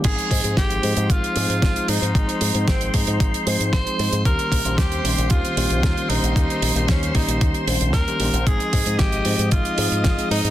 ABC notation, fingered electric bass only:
X:1
M:4/4
L:1/16
Q:1/4=114
K:Ab
V:1 name="Fingered electric bass" clef=bass
A,,, z A,, A,, A,,,2 A,, A,, A,,, z A,, A,, A,,, z A,, A,, | A,,, z A,, A,, A,,,2 A,, A,, A,,, z A,, A,, A,,, z A,, A,, | E,, z B,,, B,,, E,,2 B,,, B,,, E,, z B,,, B,,, E,, z B,,, B,,, | E,, z B,,, B,,, E,,2 B,,, B,,, E,, z B,,, B,,, E,, z B,,, B,,, |
z2 A,, A,, A,,,2 A,, A,, A,,, z A,, A,, A,,, z A,, A,, |]